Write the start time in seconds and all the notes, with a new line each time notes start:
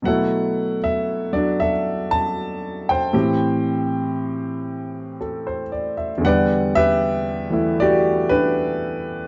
0.02 B2 F#3 A3 F#5
0.08 E4 A4
0.84 E5
1.33 F#3 D4 D5
1.60 A4 E5
2.11 A5
2.89 C5 G5
3.13 A2 E3 C4 G4
5.21 A4
5.47 C5
5.72 D5
5.97 E5
6.18 E2 D3
6.25 G3 B4 D5 F#5
6.75 G4 B4 E5
7.50 E3 A3 E4
7.80 F#4 G4 D5
8.29 D4 G4 B4